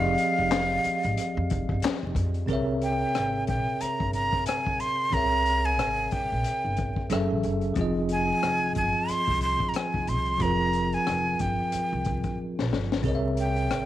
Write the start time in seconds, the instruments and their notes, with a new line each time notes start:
Already playing: upright bass F1, tine electric piano F3 C4 G4 G#4 D5 D#5, flute F5
0.18 closed hi-hat
0.38 upright bass F1
0.52 snare, clap, closed hi-hat
0.84 muted upright bass stroke, closed hi-hat
1.03 upright bass G#1, closed hi-hat
1.17 closed hi-hat
1.37 upright bass F2
1.50 upright bass F1, kick, closed hi-hat
1.69 upright bass G1, kick
1.82 muted upright bass stroke, snare, clap, closed hi-hat
2.03 upright bass F1
2.15 upright bass F2, kick, closed hi-hat
2.34 closed hi-hat
2.46 upright bass C2, tine electric piano C3 C4 G#4 A#4, kick, closed hi-hat
2.51 tine electric piano C#5 E5
2.82 flute G5, closed hi-hat
3.15 upright bass G#1, cross-stick, closed hi-hat
3.47 upright bass A#1, flute G5, kick, closed hi-hat
3.81 flute A#5, muted upright bass stroke, closed hi-hat
4.00 upright bass G1, kick
4.13 flute A#5, closed hi-hat
4.33 kick
4.46 flute G#5, cross-stick, closed hi-hat
4.66 kick
4.80 flute C6, closed hi-hat
5.10 upright bass C2, tine electric piano C3 C4 G#4, flute A#5, kick, closed hi-hat
5.14 tine electric piano A#4 C#5 E5
5.46 closed hi-hat
5.65 flute G#5
5.79 upright bass G#1, cross-stick, closed hi-hat
6.11 flute G5, kick, closed hi-hat
6.32 upright bass A#1
6.44 muted upright bass stroke, closed hi-hat
6.65 upright bass G1
6.77 kick, closed hi-hat
6.96 kick
7.10 upright bass F#1, tine electric piano F#3 C#4 G#4 A4 E5, cross-stick, closed hi-hat
7.30 upright bass A1
7.43 upright bass F#1, closed hi-hat
7.61 closed hi-hat
7.74 upright bass F1, tine electric piano F3 C4 F4, kick, closed hi-hat
7.79 tine electric piano G#4 D#5
8.09 flute G#5, closed hi-hat
8.43 upright bass F1, cross-stick, closed hi-hat
8.75 upright bass G1, flute G#5, kick, closed hi-hat
9.08 flute C6, muted upright bass stroke, closed hi-hat
9.28 upright bass C2, kick
9.41 flute C6, closed hi-hat
9.60 kick
9.69 flute A#5
9.74 flute G#5, cross-stick, closed hi-hat
9.94 upright bass F1, kick
10.07 upright bass C2, flute C6, closed hi-hat
10.25 closed hi-hat
10.38 upright bass F1, tine electric piano F3 C4 F4, kick, closed hi-hat
10.42 tine electric piano G#4 A#4, flute A#5
10.73 closed hi-hat
10.92 flute G#5, closed hi-hat
11.07 upright bass F1, cross-stick, closed hi-hat
11.39 upright bass G1, flute G5, kick, closed hi-hat
11.72 muted upright bass stroke, closed hi-hat
11.93 upright bass C2
12.05 kick, closed hi-hat
12.24 kick, closed hi-hat
12.59 upright bass A#1, snare
12.73 upright bass G1, snare
12.92 snare
13.02 upright bass C2, tine electric piano C3 C4 G#4 A#4, kick, closed hi-hat
13.07 tine electric piano C#5 D#5
13.15 tine electric piano E5
13.37 flute G5, closed hi-hat
13.56 closed hi-hat
13.71 upright bass G#1, cross-stick, closed hi-hat